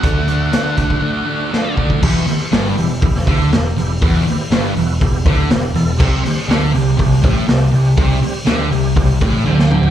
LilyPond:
<<
  \new Staff \with { instrumentName = "Lead electric guitar" } { \time 4/4 \key e \minor \tempo 4 = 121 fis''2.~ fis''8 r8 | r1 | r1 | r1 |
r1 | }
  \new Staff \with { instrumentName = "Tonewheel organ" } { \time 4/4 \key e \minor << { r1 | r1 | r1 | r1 |
r2. g''4 | } \\ { <a d' fis'>8 <a d' a'>8 <a d' fis'>8 <a d' fis'>8 <a d' fis'>8 <a d' fis'>8 <a d' fis'>8 <a d' fis'>8 | <b e' g'>8 <b e' g'>8 <b e' g'>8 <b e' g'>8 <b e' g'>8 <b e' g'>8 <b e' g'>8 <b e' g'>8 | <b e' fis'>8 <b e' g'>8 <b e' g'>8 <b e' fis'>8 <b e' g'>8 <b e' g'>8 <b e' g'>8 <b e' a'>8 | <g c' g'>8 <g c' g'>8 <g c' g'>8 <g c' g'>8 <g c' g'>8 <g c' g'>8 <g c' g'>8 <g c' g'>8 |
<g c' g'>8 <g c' g'>8 <g c' g'>8 <g c' g'>8 <g c' g'>8 <g c' g'>8 <g c' g'>8 <g c' g'>8 | } >> }
  \new Staff \with { instrumentName = "Distorted electric guitar" } { \clef bass \time 4/4 \key e \minor <d a d'>8 <d a d'>8 <d a d'>8 <d a d'>8 <d a d'>8 <d a d'>8 <d a d'>8 <d a d'>8 | e,8 r8 g,8 e,8 e,8 d8 e,8 e,8 | e,8 r8 g,8 e,8 e,8 d8 e,8 e,8 | c8 r8 d8 c8 c8 a,8 c8 c8 |
c8 r8 d8 c8 c8 a,8 d4 | }
  \new Staff \with { instrumentName = "Picked electric bass" } { \clef bass \time 4/4 \key e \minor d,4 d4 r2 | e,,8 r8 g,,8 e,,8 e,,8 d,8 e,,8 e,,8 | e,,8 r8 g,,8 e,,8 e,,8 d,8 e,,8 e,,8 | c,8 r8 d,8 c,8 c,8 a,,8 c,8 c,8 |
c,8 r8 d,8 c,8 c,8 a,,8 d,4 | }
  \new DrumStaff \with { instrumentName = "Drums" } \drummode { \time 4/4 <hh bd>8 hh8 <hh sn>8 <hh bd>16 bd16 r4 sn8 bd16 bd16 | <cymc bd>8 hho8 <hho sn>8 hho8 <hho bd>16 sn16 <hho bd>8 <hho sn>8 hho8 | <hho bd>8 hho8 <hho sn>8 hho8 <hho bd>8 <hho bd>8 <hho sn>8 hho8 | <cymc bd>8 hho8 <hho sn>8 hho8 <hho bd>8 <hho bd>8 <hho sn>8 hho8 |
<hho bd>8 hho8 <hho sn>8 hho8 <hho bd>8 <hho bd>8 tommh16 sn16 toml16 tomfh16 | }
>>